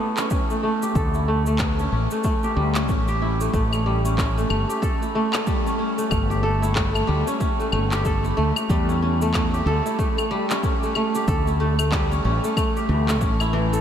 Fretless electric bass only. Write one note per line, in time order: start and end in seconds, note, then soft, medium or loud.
0.95 1.86 D2 medium
1.92 2.06 A1 medium
2.56 2.89 D2 medium
2.89 3.47 A1 medium
3.53 4.44 A1 medium
4.50 4.64 G1 medium
6.11 7.02 G1 medium
7.09 7.22 D2 loud
7.72 8.31 G1 medium
8.37 8.51 D2 medium
8.70 9.60 E2 medium
9.66 9.80 D2 loud
11.28 12.18 D2 loud
12.25 12.38 A1 loud
12.89 13.21 D2 loud
13.21 13.80 A1 medium